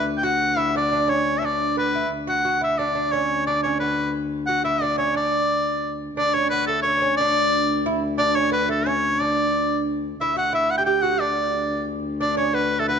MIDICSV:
0, 0, Header, 1, 4, 480
1, 0, Start_track
1, 0, Key_signature, 2, "major"
1, 0, Tempo, 339559
1, 92, Time_signature, 3, 2, 24, 8
1, 8251, Tempo, 335196
1, 18500, End_track
2, 0, Start_track
2, 0, Title_t, "Shawm"
2, 0, Program_c, 0, 111
2, 248, Note_on_c, 0, 79, 88
2, 341, Note_on_c, 0, 78, 113
2, 362, Note_off_c, 0, 79, 0
2, 824, Note_on_c, 0, 76, 98
2, 845, Note_off_c, 0, 78, 0
2, 1060, Note_off_c, 0, 76, 0
2, 1083, Note_on_c, 0, 74, 93
2, 1550, Note_on_c, 0, 73, 97
2, 1571, Note_off_c, 0, 74, 0
2, 1952, Note_on_c, 0, 76, 70
2, 1974, Note_off_c, 0, 73, 0
2, 2047, Note_on_c, 0, 74, 88
2, 2068, Note_off_c, 0, 76, 0
2, 2507, Note_off_c, 0, 74, 0
2, 2516, Note_on_c, 0, 71, 85
2, 2956, Note_off_c, 0, 71, 0
2, 3233, Note_on_c, 0, 78, 98
2, 3675, Note_off_c, 0, 78, 0
2, 3723, Note_on_c, 0, 76, 81
2, 3931, Note_on_c, 0, 74, 83
2, 3952, Note_off_c, 0, 76, 0
2, 4408, Note_on_c, 0, 73, 91
2, 4429, Note_off_c, 0, 74, 0
2, 4894, Note_off_c, 0, 73, 0
2, 4901, Note_on_c, 0, 74, 90
2, 5124, Note_off_c, 0, 74, 0
2, 5131, Note_on_c, 0, 73, 76
2, 5358, Note_off_c, 0, 73, 0
2, 5365, Note_on_c, 0, 71, 77
2, 5818, Note_off_c, 0, 71, 0
2, 6308, Note_on_c, 0, 78, 104
2, 6544, Note_off_c, 0, 78, 0
2, 6561, Note_on_c, 0, 76, 90
2, 6811, Note_on_c, 0, 74, 92
2, 6832, Note_off_c, 0, 76, 0
2, 7029, Note_off_c, 0, 74, 0
2, 7038, Note_on_c, 0, 73, 90
2, 7268, Note_off_c, 0, 73, 0
2, 7304, Note_on_c, 0, 74, 93
2, 8438, Note_off_c, 0, 74, 0
2, 8726, Note_on_c, 0, 74, 113
2, 8970, Note_on_c, 0, 73, 101
2, 8992, Note_off_c, 0, 74, 0
2, 9188, Note_off_c, 0, 73, 0
2, 9196, Note_on_c, 0, 71, 94
2, 9430, Note_off_c, 0, 71, 0
2, 9436, Note_on_c, 0, 69, 83
2, 9651, Note_off_c, 0, 69, 0
2, 9660, Note_on_c, 0, 73, 101
2, 10126, Note_off_c, 0, 73, 0
2, 10156, Note_on_c, 0, 74, 119
2, 11315, Note_off_c, 0, 74, 0
2, 11612, Note_on_c, 0, 74, 107
2, 11857, Note_on_c, 0, 73, 98
2, 11878, Note_off_c, 0, 74, 0
2, 12093, Note_off_c, 0, 73, 0
2, 12102, Note_on_c, 0, 71, 94
2, 12327, Note_off_c, 0, 71, 0
2, 12354, Note_on_c, 0, 69, 83
2, 12600, Note_on_c, 0, 73, 100
2, 12621, Note_off_c, 0, 69, 0
2, 13083, Note_on_c, 0, 74, 99
2, 13105, Note_off_c, 0, 73, 0
2, 13929, Note_off_c, 0, 74, 0
2, 14506, Note_on_c, 0, 76, 96
2, 14729, Note_off_c, 0, 76, 0
2, 14754, Note_on_c, 0, 78, 99
2, 14973, Note_off_c, 0, 78, 0
2, 14991, Note_on_c, 0, 76, 94
2, 15220, Note_on_c, 0, 78, 96
2, 15242, Note_off_c, 0, 76, 0
2, 15313, Note_off_c, 0, 78, 0
2, 15322, Note_on_c, 0, 79, 105
2, 15381, Note_off_c, 0, 79, 0
2, 15428, Note_on_c, 0, 79, 103
2, 15668, Note_on_c, 0, 78, 100
2, 15690, Note_off_c, 0, 79, 0
2, 15923, Note_on_c, 0, 74, 85
2, 15944, Note_off_c, 0, 78, 0
2, 16888, Note_off_c, 0, 74, 0
2, 17378, Note_on_c, 0, 74, 93
2, 17598, Note_off_c, 0, 74, 0
2, 17608, Note_on_c, 0, 73, 86
2, 17855, Note_on_c, 0, 71, 91
2, 17877, Note_off_c, 0, 73, 0
2, 18211, Note_on_c, 0, 69, 87
2, 18233, Note_off_c, 0, 71, 0
2, 18329, Note_off_c, 0, 69, 0
2, 18336, Note_on_c, 0, 71, 87
2, 18500, Note_off_c, 0, 71, 0
2, 18500, End_track
3, 0, Start_track
3, 0, Title_t, "Lute"
3, 0, Program_c, 1, 24
3, 327, Note_on_c, 1, 66, 94
3, 794, Note_off_c, 1, 66, 0
3, 800, Note_on_c, 1, 64, 80
3, 1056, Note_off_c, 1, 64, 0
3, 1070, Note_on_c, 1, 62, 87
3, 1291, Note_off_c, 1, 62, 0
3, 1308, Note_on_c, 1, 62, 77
3, 1521, Note_on_c, 1, 61, 84
3, 1550, Note_off_c, 1, 62, 0
3, 2006, Note_on_c, 1, 62, 80
3, 2026, Note_off_c, 1, 61, 0
3, 2503, Note_on_c, 1, 59, 77
3, 2508, Note_off_c, 1, 62, 0
3, 2749, Note_off_c, 1, 59, 0
3, 2756, Note_on_c, 1, 64, 73
3, 2973, Note_off_c, 1, 64, 0
3, 3213, Note_on_c, 1, 66, 81
3, 3441, Note_off_c, 1, 66, 0
3, 3461, Note_on_c, 1, 66, 87
3, 3687, Note_off_c, 1, 66, 0
3, 3692, Note_on_c, 1, 64, 74
3, 3939, Note_off_c, 1, 64, 0
3, 3945, Note_on_c, 1, 62, 80
3, 4156, Note_off_c, 1, 62, 0
3, 4173, Note_on_c, 1, 62, 70
3, 4425, Note_off_c, 1, 62, 0
3, 4427, Note_on_c, 1, 61, 82
3, 4907, Note_on_c, 1, 62, 82
3, 4918, Note_off_c, 1, 61, 0
3, 5151, Note_off_c, 1, 62, 0
3, 5162, Note_on_c, 1, 61, 73
3, 5385, Note_off_c, 1, 61, 0
3, 5391, Note_on_c, 1, 59, 63
3, 5832, Note_off_c, 1, 59, 0
3, 6346, Note_on_c, 1, 66, 88
3, 6565, Note_off_c, 1, 66, 0
3, 6571, Note_on_c, 1, 64, 83
3, 6804, Note_off_c, 1, 64, 0
3, 6809, Note_on_c, 1, 62, 82
3, 7037, Note_on_c, 1, 61, 69
3, 7059, Note_off_c, 1, 62, 0
3, 7271, Note_on_c, 1, 62, 74
3, 7292, Note_off_c, 1, 61, 0
3, 8422, Note_off_c, 1, 62, 0
3, 8730, Note_on_c, 1, 62, 82
3, 8970, Note_on_c, 1, 61, 81
3, 8980, Note_off_c, 1, 62, 0
3, 9220, Note_off_c, 1, 61, 0
3, 9226, Note_on_c, 1, 59, 79
3, 9456, Note_off_c, 1, 59, 0
3, 9462, Note_on_c, 1, 57, 67
3, 9689, Note_off_c, 1, 57, 0
3, 9695, Note_on_c, 1, 61, 81
3, 9878, Note_on_c, 1, 62, 61
3, 9883, Note_off_c, 1, 61, 0
3, 9939, Note_off_c, 1, 62, 0
3, 9945, Note_on_c, 1, 61, 78
3, 10190, Note_off_c, 1, 61, 0
3, 10209, Note_on_c, 1, 62, 90
3, 11142, Note_off_c, 1, 62, 0
3, 11147, Note_on_c, 1, 64, 99
3, 11369, Note_off_c, 1, 64, 0
3, 11607, Note_on_c, 1, 62, 97
3, 11864, Note_off_c, 1, 62, 0
3, 11864, Note_on_c, 1, 61, 80
3, 12081, Note_off_c, 1, 61, 0
3, 12086, Note_on_c, 1, 59, 88
3, 12324, Note_off_c, 1, 59, 0
3, 12330, Note_on_c, 1, 57, 77
3, 12575, Note_off_c, 1, 57, 0
3, 12580, Note_on_c, 1, 61, 88
3, 13063, Note_on_c, 1, 62, 80
3, 13078, Note_off_c, 1, 61, 0
3, 13862, Note_off_c, 1, 62, 0
3, 14517, Note_on_c, 1, 64, 90
3, 14731, Note_off_c, 1, 64, 0
3, 14736, Note_on_c, 1, 66, 84
3, 14965, Note_off_c, 1, 66, 0
3, 14970, Note_on_c, 1, 64, 85
3, 15341, Note_on_c, 1, 67, 82
3, 15347, Note_off_c, 1, 64, 0
3, 15436, Note_off_c, 1, 67, 0
3, 15453, Note_on_c, 1, 67, 93
3, 15687, Note_on_c, 1, 66, 82
3, 15705, Note_off_c, 1, 67, 0
3, 15931, Note_off_c, 1, 66, 0
3, 15937, Note_on_c, 1, 62, 72
3, 16838, Note_off_c, 1, 62, 0
3, 17371, Note_on_c, 1, 62, 87
3, 17605, Note_on_c, 1, 61, 77
3, 17619, Note_off_c, 1, 62, 0
3, 17834, Note_off_c, 1, 61, 0
3, 17840, Note_on_c, 1, 59, 74
3, 18211, Note_off_c, 1, 59, 0
3, 18217, Note_on_c, 1, 57, 71
3, 18335, Note_off_c, 1, 57, 0
3, 18346, Note_on_c, 1, 59, 79
3, 18500, Note_off_c, 1, 59, 0
3, 18500, End_track
4, 0, Start_track
4, 0, Title_t, "Viola da gamba"
4, 0, Program_c, 2, 42
4, 0, Note_on_c, 2, 38, 78
4, 2980, Note_off_c, 2, 38, 0
4, 2989, Note_on_c, 2, 38, 74
4, 8714, Note_off_c, 2, 38, 0
4, 8723, Note_on_c, 2, 38, 79
4, 14505, Note_off_c, 2, 38, 0
4, 14513, Note_on_c, 2, 38, 75
4, 18500, Note_off_c, 2, 38, 0
4, 18500, End_track
0, 0, End_of_file